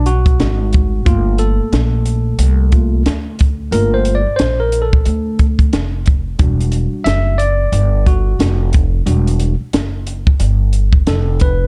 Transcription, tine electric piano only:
0.00 1.02 G3 soft
0.06 1.09 F#4 loud
1.05 2.71 A3 medium
1.05 2.72 A#3 medium
1.05 1.41 F4 medium
1.39 3.02 A4 medium
2.72 3.03 A3 medium
2.72 3.03 A#3 soft
2.72 3.03 F4 medium
3.71 4.19 A3 medium
3.71 4.20 A#3 medium
3.71 4.20 F4 medium
3.71 3.96 A#4 medium
3.94 4.15 C5 medium
4.15 4.39 D5 medium
4.36 4.61 C5 loud
4.60 4.84 A#4 medium
4.82 5.46 A4 medium
6.39 7.35 G3 medium
6.39 7.36 D4 soft
6.39 7.36 F#4 medium
7.04 7.40 E5 loud
7.38 8.08 D5 loud
8.07 8.69 F#4 medium
9.06 9.53 G3 medium
9.06 9.53 D4 medium
9.06 9.54 F#4 medium
11.08 11.41 A4 medium
11.42 11.67 B4 medium

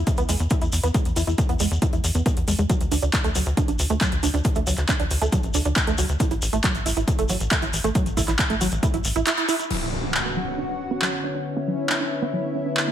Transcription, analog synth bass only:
0.18 0.26 D2 medium
0.29 0.37 E2 medium
0.40 0.47 E2 medium
0.62 0.69 E2 medium
0.73 0.80 E2 loud
0.83 0.91 E2 medium
1.05 1.13 E2 medium
1.16 1.24 E2 loud
1.27 1.35 E2 medium
1.49 1.57 E2 medium
1.60 1.68 E2 loud
1.71 1.79 E2 medium
1.93 2.01 E2 medium
2.04 2.12 E2 loud
2.15 2.23 E2 medium
2.37 2.45 E2 medium
2.48 2.55 E2 loud
2.59 2.66 E2 medium
2.81 2.88 D2 medium
2.91 2.99 D2 loud
3.02 3.10 D2 medium
3.24 3.32 D2 medium
3.35 3.43 D2 loud
3.46 3.54 D2 loud
3.68 3.76 A1 medium
3.79 3.87 D2 medium
3.90 3.98 D2 medium
4.12 4.20 D2 medium
4.23 4.31 D2 loud
4.34 4.42 D2 medium
4.56 4.64 D2 medium
4.67 4.75 D2 loud
4.78 4.85 D2 medium
5.00 5.07 D2 medium
5.11 5.18 D2 medium
5.21 5.29 D2 medium
5.43 5.51 A1 medium
5.54 5.62 D2 loud
5.65 5.73 D2 loud
5.87 5.95 D2 medium
5.98 6.06 D2 loud
6.09 6.17 D2 medium
6.31 6.39 A1 medium
6.42 6.50 A1 loud
6.53 6.61 A1 medium
6.75 6.82 A1 medium
6.86 6.93 A1 medium
6.97 7.04 A1 loud
7.18 7.26 F#1 medium
7.29 7.37 A1 loud
7.40 7.48 A1 medium
7.62 7.70 A1 medium
7.73 7.81 A1 loud
7.84 7.92 A1 medium
8.06 8.14 A1 medium
8.17 8.25 A1 loud
8.28 8.36 A1 medium
8.50 8.58 A1 medium
8.61 8.69 A1 loud
8.72 8.80 A1 loud
8.94 9.01 A1 medium
9.05 9.12 A1 loud
9.16 9.23 A1 loud

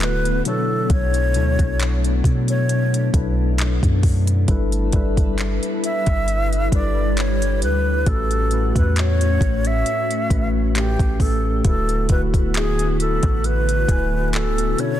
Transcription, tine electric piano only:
0.00 0.45 D3 medium
0.00 0.45 A3 medium
0.00 0.45 E4 medium
0.00 0.46 F#4 medium
0.00 0.46 A4 medium
0.45 1.18 B2 medium
0.45 1.19 F#3 medium
0.45 1.19 D4 medium
0.45 1.19 E4 medium
0.45 1.19 A4 medium
0.45 1.20 C#5 medium
1.35 2.74 B2 medium
1.35 2.74 F#3 medium
1.35 2.75 D4 medium
1.35 2.75 E4 medium
1.35 2.75 A4 medium
1.35 2.75 C#5 medium
3.14 4.19 B2 medium
3.14 4.19 F#3 medium
3.14 4.20 D4 medium
3.14 4.20 E4 medium
3.14 4.20 A4 medium
3.14 4.21 B4 medium
4.48 4.84 G3 medium
4.48 4.84 D4 medium
4.48 4.84 E4 medium
4.48 4.85 A4 medium
4.48 4.85 B4 loud
4.93 6.32 G3 medium
4.93 6.32 D4 medium
4.93 6.33 E4 medium
4.93 6.33 A4 medium
4.93 6.34 B4 medium
6.72 7.77 G3 medium
6.72 7.78 D4 medium
6.72 7.78 E4 medium
6.72 7.78 A4 medium
6.72 7.79 B4 medium
8.06 8.42 A2 medium
8.06 8.42 A3 medium
8.06 8.43 C#4 medium
8.06 8.43 F#4 medium
8.06 8.43 B4 medium
8.51 9.90 A2 medium
8.51 9.91 A3 medium
8.51 9.91 C#4 medium
8.51 9.91 F#4 medium
8.51 9.92 B4 medium
10.30 10.74 A2 medium
10.30 10.75 A3 medium
10.30 10.75 C#4 medium
10.30 10.76 F#4 medium
10.30 10.76 B4 medium
10.75 11.48 A2 medium
10.75 11.49 A3 medium
10.75 11.49 C#4 medium
10.75 11.49 G4 medium
10.75 10.84 A#4 medium
10.84 11.53 B4 medium
11.64 12.00 D3 medium
11.64 12.00 A3 medium
11.64 12.01 E4 medium
11.64 12.01 F#4 medium
11.64 12.02 B4 medium
12.09 13.49 D3 medium
12.09 13.49 A3 medium
12.09 13.49 E4 medium
12.09 13.50 F#4 medium
12.09 13.50 B4 medium
13.88 14.78 D3 medium
13.88 14.78 A3 medium
13.88 14.79 E4 medium
13.88 14.79 F#4 medium
13.88 14.79 G#5 medium
14.78 15.00 B2 medium
14.78 15.00 B3 medium
14.78 15.00 C#4 medium
14.78 15.00 D4 medium
14.78 15.00 E4 medium
14.78 15.00 A4 medium

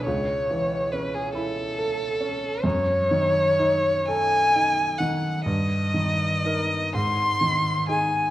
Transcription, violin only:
0.04 0.93 C#5 medium
0.92 1.16 B4 medium
1.14 1.33 G#4 medium
1.34 2.65 A4 medium
2.64 4.07 C#5 medium
4.06 4.99 G#5 loud
4.98 5.44 F#5 medium
5.45 6.91 D#5 medium
6.95 7.88 C6 medium
7.89 8.30 G#5 medium

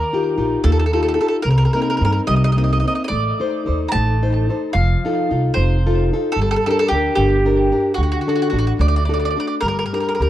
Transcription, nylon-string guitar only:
0.00 0.37 D#3 medium
0.13 0.36 D#4 soft
0.13 0.37 F4 soft
0.13 0.38 G4 medium
0.38 0.82 D#4 medium
0.38 0.82 F4 soft
0.38 0.82 G4 medium
0.64 1.17 A#3 medium
0.93 1.18 D#4 soft
0.93 1.19 F4 soft
0.93 1.19 G4 soft
1.19 1.40 D#4 soft
1.19 1.40 F4 soft
1.19 1.41 G4 soft
1.47 2.00 C3 medium
1.75 2.00 A#3 soft
1.75 2.00 C4 soft
1.75 2.01 D#4 medium
2.01 2.46 A#3 soft
2.01 2.47 C4 soft
2.01 2.47 D#4 soft
2.27 2.83 G3 soft
2.56 2.82 A#3 soft
2.56 2.83 C4 soft
2.56 2.83 D#4 medium
2.83 3.05 A#3 soft
2.83 3.05 C4 soft
2.83 3.06 D#4 soft
3.10 3.65 A3 medium
3.40 3.65 D#4 soft
3.40 3.65 A4 soft
3.40 3.66 C5 soft
3.66 4.11 D#4 soft
3.66 4.12 A4 soft
3.66 4.12 C5 soft
3.92 4.47 A3 medium
4.22 4.48 D#4 soft
4.22 4.49 A4 soft
4.22 4.49 C5 soft
4.49 4.70 D#4 soft
4.49 4.71 A4 soft
4.49 4.71 C5 soft
4.76 5.29 F3 medium
5.05 5.29 D#4 soft
5.05 5.30 F4 soft
5.05 5.31 A4 medium
5.31 5.74 D#4 soft
5.31 5.75 F4 soft
5.31 5.75 A4 soft
5.58 6.10 C3 medium
5.86 6.12 D#4 soft
5.86 6.12 F4 soft
5.86 6.12 A4 soft
6.13 6.33 D#4 soft
6.13 6.33 F4 soft
6.13 6.33 A4 medium
6.39 6.91 G3 medium
6.67 6.92 D4 medium
6.67 6.92 G4 soft
6.67 6.92 A#4 soft
6.93 7.36 D4 soft
6.93 7.36 G4 soft
6.93 7.36 A#4 soft
7.18 7.71 D3 medium
7.45 7.71 D4 soft
7.45 7.71 G4 soft
7.45 7.71 A#4 soft
7.72 7.93 D4 soft
7.72 7.93 G4 soft
7.72 7.93 A#4 soft
7.98 8.52 D3 medium
8.27 8.52 D4 soft
8.27 8.52 F#4 soft
8.27 8.52 A4 medium
8.53 8.98 D4 soft
8.53 8.98 F#4 soft
8.53 8.98 A4 soft
8.80 9.34 A3 medium
9.09 9.35 D4 soft
9.09 9.36 F#4 soft
9.09 9.36 A4 medium
9.36 9.58 D4 soft
9.36 9.58 F#4 soft
9.36 9.58 A4 soft
9.63 10.18 G3 soft
9.93 10.19 D4 soft
9.93 10.19 G4 soft
9.93 10.20 A#4 soft
10.20 10.30 D4 soft
10.20 10.30 G4 soft
10.20 10.30 A#4 soft

